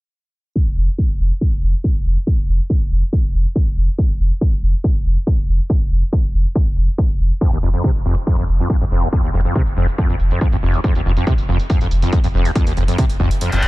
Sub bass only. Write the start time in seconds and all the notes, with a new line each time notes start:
0.67 F1
0.77 F1
1.09 F1
1.20 F1
1.52 F1
1.63 F1
1.95 F1
2.06 F1
2.38 F1
2.48 F1
2.81 F1
2.91 F1
3.24 F1
3.34 F1
3.67 F1
3.77 F1
4.09 F1
4.20 F1
4.52 F1
4.63 F1
4.95 F1
5.05 F1
5.38 F1
5.48 F1
5.81 F1
5.91 F1
6.24 F1
6.34 F1
6.67 F1
6.77 F1
7.10 F1
7.20 F1
7.52 F1
7.63 F1
7.95 F1
8.05 F1
8.38 F1
8.48 F1
8.81 F1
8.91 F1
9.24 F1
9.34 F1
9.67 F1
9.77 F1
10.10 F1
10.20 F1
10.52 F1
10.63 F1
10.95 F1
11.06 F1
11.38 F1
11.48 F1
11.81 F1
11.91 F1
12.24 F1
12.34 F1
12.67 F1
12.77 F1
13.10 F1
13.20 F1
13.52 F1
13.63 F1